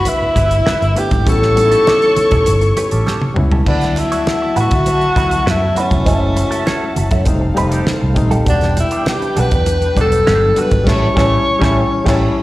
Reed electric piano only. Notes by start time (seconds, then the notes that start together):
Already playing: A3 B3 D4 E4
0.94 A3 B3 D4 E4
1.25 G3 B3 C#4 E4
1.55 G3 B3 C#4 D#4
1.65 E4
3.34 G3 B3 C#4 E4
3.64 F#3 A3 B3 E4
5.14 F3 A3 B3 E4
5.21 F#3
5.75 F#3 A3 B3 E4
6.05 G#3 A3 C#4 E4
7.25 G3 A3 C4 D#4
7.55 G3 A3 C4 D#4
8.14 G3 A3 C4 D#4
8.45 G3 B3 D4 G4
9.95 F#3 G3 B3 D4
10.54 G3 B3 D4 F#4
10.84 G3 C#4 E4
11.14 G3 C#4 E4
11.59 G3 C#4 E4
12.04 G3 C#4 E4